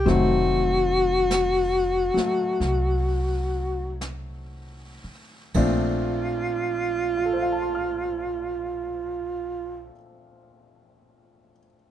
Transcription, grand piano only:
0.05 5.54 D#3 soft
0.05 2.13 F#3 soft
0.05 2.15 A3 soft
0.05 5.55 C4 soft
2.14 5.54 F#3 soft
2.14 5.54 A3 soft
5.55 9.92 A#2 soft
5.55 9.92 F3 soft
5.55 9.93 A3 soft
5.55 9.93 C4 soft
5.55 9.94 D4 medium
7.17 11.51 F4 soft
7.26 11.59 A4 soft
7.33 11.67 C5 soft
7.42 11.76 F5 soft
7.52 11.86 A5 soft
7.62 11.91 C6 soft
7.75 11.91 F6 soft

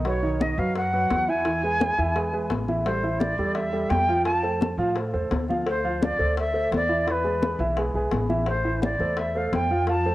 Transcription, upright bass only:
0.00 0.52 B1 medium
0.58 1.07 F#2 medium
1.10 1.92 E2 medium
1.98 2.47 E2 medium
2.50 3.32 A1 medium
3.38 3.87 E2 medium
3.90 4.73 F2 medium
4.77 5.11 A2 medium
5.14 5.30 E2 medium
5.31 6.13 D2 medium
6.19 6.68 D2 medium
6.71 7.54 E2 medium
7.59 7.92 B1 medium
7.94 8.11 B1 medium
8.12 8.94 A1 medium
8.99 9.48 E2 medium
9.52 10.15 F2 medium

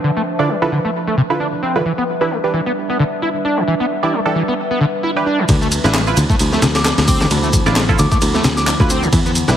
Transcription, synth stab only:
0.39 0.50 D3 medium
0.39 0.50 E4 medium
0.39 0.50 F4 medium
0.39 0.50 A4 medium
0.39 0.50 D5 medium
0.62 0.73 D3 loud
0.62 0.73 E4 medium
0.62 0.73 F4 medium
0.62 0.73 A4 medium
0.62 0.73 B4 loud
1.30 1.72 D3 medium
1.30 1.72 E4 medium
1.30 1.72 F4 medium
1.30 1.72 A4 medium
1.30 1.72 B4 medium
1.75 1.84 D3 medium
1.75 1.84 E4 medium
1.75 1.84 F4 medium
1.75 1.84 A4 medium
1.75 1.84 B4 medium
2.21 2.41 E3 medium
2.21 2.41 D4 medium
2.21 2.41 G4 medium
2.21 2.41 B4 medium
2.44 2.55 E3 medium
2.44 2.55 D4 medium
2.44 2.55 G4 medium
2.44 2.55 B4 medium
4.03 4.14 E3 medium
4.03 4.14 D4 medium
4.03 4.14 G4 medium
4.03 4.14 D5 medium
4.26 4.37 E3 loud
4.26 4.37 D4 medium
4.26 4.37 G4 medium
4.26 4.37 A4 loud
5.16 5.28 E3 medium
5.16 5.27 D4 medium
5.16 5.27 G4 medium
5.16 5.28 B4 medium
5.85 6.04 E4 medium
5.85 6.04 F4 medium
5.85 6.04 B4 medium
6.07 6.18 E4 medium
6.07 6.18 F4 medium
6.07 6.18 B4 loud
7.66 7.77 E4 medium
7.66 7.77 F4 medium
7.66 7.77 D5 loud
7.89 8.00 E4 loud
7.89 8.00 F4 medium
7.89 8.00 A4 loud
8.80 8.91 E4 medium
8.80 8.91 F4 medium
8.80 8.91 B4 medium
9.48 9.57 D4 medium
9.48 9.57 G4 medium
9.48 9.57 B4 medium

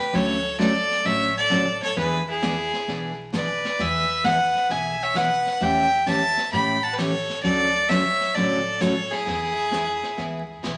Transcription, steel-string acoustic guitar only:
0.13 0.36 D3 medium
0.13 0.36 F#3 medium
0.13 0.37 A3 medium
0.13 0.37 C#4 medium
0.13 0.37 F#4 medium
0.58 0.71 D3 medium
0.58 0.71 F#3 medium
0.58 0.71 A3 medium
0.58 0.71 C#4 medium
0.58 0.71 F#4 medium
1.04 1.28 D3 medium
1.04 1.28 F#3 medium
1.04 1.28 A3 medium
1.04 1.28 C#4 medium
1.04 1.28 F#4 medium
1.50 1.62 D3 medium
1.50 1.62 F#3 medium
1.50 1.63 A3 medium
1.50 1.63 C#4 medium
1.50 1.63 F#4 medium
1.96 2.19 E3 medium
1.96 2.19 B3 medium
1.96 2.20 D4 medium
1.96 2.20 G#4 medium
2.42 2.54 E3 medium
2.42 2.55 B3 medium
2.42 2.55 D4 medium
2.42 2.55 G#4 medium
2.88 3.11 E3 medium
2.88 3.11 B3 medium
2.88 3.11 D4 medium
2.88 3.11 G#4 medium
3.33 3.45 E3 medium
3.33 3.46 B3 medium
3.33 3.46 D4 medium
3.33 3.46 G#4 medium
3.79 4.02 E3 medium
3.79 4.02 B3 medium
3.79 4.02 E4 medium
3.79 4.03 G#4 medium
4.24 4.37 E3 medium
4.24 4.37 B3 medium
4.24 4.37 E4 medium
4.24 4.37 G#4 medium
4.69 4.93 E3 medium
4.69 4.93 B3 medium
4.69 4.93 E4 medium
4.69 4.93 G#4 medium
5.14 5.27 E3 medium
5.14 5.28 B3 medium
5.14 5.28 E4 medium
5.14 5.28 G#4 medium
5.61 5.84 E3 medium
5.61 5.84 A3 medium
5.61 5.85 C#4 medium
5.61 5.85 G4 medium
6.06 6.19 E3 medium
6.06 6.19 A3 medium
6.06 6.19 C#4 medium
6.06 6.19 G4 medium
6.52 6.76 E3 medium
6.52 6.76 A3 medium
6.52 6.76 C#4 medium
6.52 6.76 G4 medium
6.98 7.11 E3 medium
6.98 7.11 A3 medium
6.98 7.11 C#4 medium
6.98 7.11 G4 medium
7.44 7.67 D3 medium
7.44 7.67 F#3 medium
7.44 7.67 A3 medium
7.44 7.67 C#4 medium
7.44 7.68 F#4 medium
7.89 8.02 D3 medium
7.89 8.02 F#3 medium
7.89 8.02 A3 medium
7.89 8.02 C#4 medium
7.89 8.02 F#4 medium
8.35 8.59 D3 medium
8.35 8.59 F#3 medium
8.35 8.59 A3 medium
8.35 8.59 C#4 medium
8.35 8.59 F#4 medium
8.80 8.93 D3 medium
8.80 8.93 F#3 medium
8.80 8.93 A3 medium
8.80 8.93 C#4 medium
8.80 8.93 F#4 medium
9.26 9.50 E3 medium
9.26 9.50 B3 medium
9.26 9.50 E4 medium
9.26 9.50 G#4 medium
9.71 9.84 E3 medium
9.71 9.84 B3 medium
9.71 9.85 E4 medium
9.71 9.85 G#4 medium
10.17 10.41 E3 soft
10.17 10.41 B3 medium
10.17 10.41 E4 medium
10.17 10.42 G#4 medium
10.63 10.76 E3 medium
10.63 10.76 B3 medium
10.63 10.76 E4 medium
10.63 10.76 G#4 medium

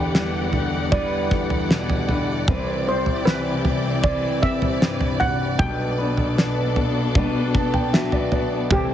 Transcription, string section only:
0.00 2.45 E2 medium
0.00 2.45 E3 medium
0.00 2.43 G4 medium
0.00 8.67 D5 medium
0.00 2.45 F#5 medium
2.47 5.56 C3 medium
2.47 5.56 G3 medium
2.47 5.56 E4 medium
2.47 5.56 G4 medium
5.59 8.68 B2 medium
5.59 8.68 B3 medium
5.59 8.68 D4 medium
5.59 8.68 A4 medium
8.70 8.94 C3 medium
8.70 8.94 A3 medium
8.70 8.94 E4 medium
8.70 8.94 G4 medium
8.70 8.94 A4 medium

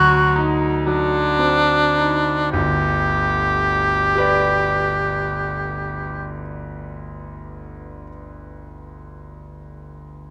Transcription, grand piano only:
0.00 2.49 D2 medium
0.00 0.66 F#3 medium
0.36 1.18 D#4 medium
0.87 1.74 F#3 medium
1.39 2.32 C4 soft
1.97 2.53 D#4 soft
2.53 6.42 G1 medium
2.53 6.42 D2 medium
4.15 8.04 G4 medium
4.15 8.06 B4 medium
4.20 8.08 D5 medium

